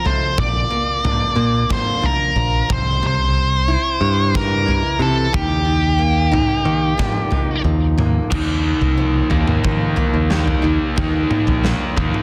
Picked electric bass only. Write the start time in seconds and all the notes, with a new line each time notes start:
0.38 A#1
1.36 A#2
2.36 A#1
2.70 C2
4.01 G2
4.99 C3
5.34 D#2
6.65 D#3
7.64 D#2
8.32 D#2
8.81 C2
9.30 D#2
9.65 D#3
10.14 D#2
10.64 D#2
10.98 D#2
11.47 A#1
11.97 D#2